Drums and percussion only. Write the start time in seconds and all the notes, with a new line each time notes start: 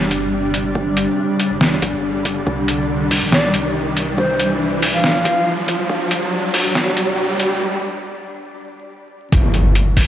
0.11 closed hi-hat
0.54 closed hi-hat
0.75 kick
0.97 closed hi-hat
1.40 closed hi-hat
1.61 snare
1.82 kick, closed hi-hat
2.25 kick, closed hi-hat
2.47 kick
2.68 closed hi-hat
3.11 kick, open hi-hat
3.32 snare
3.54 closed hi-hat
3.97 closed hi-hat
4.18 kick
4.40 closed hi-hat
4.82 open hi-hat
5.04 snare
5.25 kick, closed hi-hat
5.68 kick, closed hi-hat
5.90 kick
6.11 closed hi-hat
6.54 kick, open hi-hat
6.75 snare
6.97 closed hi-hat
7.40 closed hi-hat
9.32 kick, closed hi-hat
9.54 closed hi-hat
9.75 closed hi-hat
9.97 kick, open hi-hat